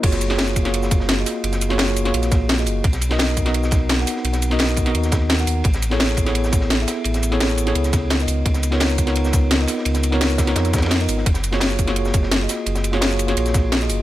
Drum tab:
CC |x-------------------------------|--------------------------------|--------------------------------|--------------------------------|
RD |x---x---x---x---x---x---x---x---|x---x---x---x---x---x---x---x---|x---x---x---x---x---x---x---x---|x---x---x---x---x---x---x---x---|
HH |x-x-x---x---x-x-x---x---x---o---|x-x-x---x---x-x-x-x-x---x---o---|x-x-x---x---x-x-x---x---x---o---|x-x-x---x---x-x-x-x-x---x---o---|
SH |--x-x-----x-x-----x-x-------x---|--x-x-----x-x-----x-x-----x-x---|--x-x-----x-x-----x-x-------x---|--x-x-----x-x-----x-x-----x-x---|
SD |--o---o-o-----o---o---o-o---o---|--o---o-o-----o---o-o---o-------|--o---o-o-----o---o-o---o-o-o-o-|--o---o-o-----o---o-o---o-------|
BD |o-----------o-------o-----------|--------------------o-----------|o-----------o-------o-----------|------------o-------o-----------|

CC |--------------------------------|--------------------------------|--------------------------------|--------------------------------|
RD |x---x---x---x---x---x---x---x---|x---x---x---x---x---x---x---x---|x---x---x---x---x---x---x---x---|x---x---x---x---x---xxxxx---x---|
HH |x-x-x---x---x-x-x---x---x---o---|x-x-x---x---x-x-x-x-x---x---o---|x-x-x---x---x-x-x---x---x---o---|x-x-x---x---x-x-x-x-x-x-x---o---|
SH |--x-x-----x-x-----x-x-------x---|--x-x-----x-x-----x-x-----x-x---|--x-x-----x-x-----x-x-------x---|--x-x-----x-x-----x-x-----x-x---|
SD |--o---o-o-----o---o---o-o---o---|--o---o-o-----o---o-o---o-------|--o---o-o-----o---o-o---o-o-o-o-|--o---o-o---o-o-o-o-ooooo-----o-|
BD |o-----------o-------o-----------|--------------------o-----------|o-----------o-------o-----------|------------o-------o-----------|

CC |--------------------------------|--------------------------------|
RD |x---x---x---x---x---x---x---x---|x---x---x---x---x---x---x---x---|
HH |x-x-x---x---x-x-x---x---x---o---|x-x-x---x---x-x-x-x-x---x---o---|
SH |--x-x-----x-x-----x-x-------x---|--x-x-----x-x-----x-x-----x-x---|
SD |--o---o-o-----o---o---o-o---o---|--o---o-o-----o---o-o---o-------|
BD |o-----------o-------o-----------|--------------------o-----------|